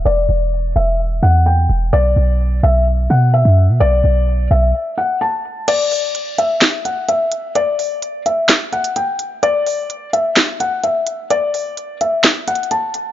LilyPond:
<<
  \new Staff \with { instrumentName = "Felt piano" } { \time 4/4 \key b \phrygian \tempo 4 = 128 d''4. e''4 fis''8 g''4 | d''4. e''8 r8 fis''8 e''4 | d''4. e''4 fis''8 a''4 | d''4. e''8 r8 fis''8 e''4 |
d''4. e''4 fis''8 g''4 | d''4. e''8 r8 fis''8 e''4 | d''4. e''4 fis''8 a''4 | }
  \new Staff \with { instrumentName = "808-style bass" } { \clef bass \time 4/4 \key b \phrygian e,,8 e,,4 e,,4 e,4 e,,8 | b,,8 b,,4 b,,4 b,8. fis,8 b,16 | b,,8 b,,4 b,,8 r2 | r1 |
r1 | r1 | r1 | }
  \new DrumStaff \with { instrumentName = "Drums" } \drummode { \time 4/4 r4 r4 r4 r4 | r4 r4 r4 r4 | r4 r4 r4 r4 | <cymc hh>8 hho8 hh8 hh8 <hc hh sn>8 hh8 hh8 hh8 |
hh8 hho8 hh8 hh8 <hc hh sn>8 hh16 hh16 hh8 hh8 | hh8 hho8 hh8 hh8 <hc hh sn>8 hh8 hh8 hh8 | hh8 hho8 hh8 hh8 \tuplet 3/2 { <hc hh sn>16 r16 r16 hh16 hh16 hh16 } hh8 hh8 | }
>>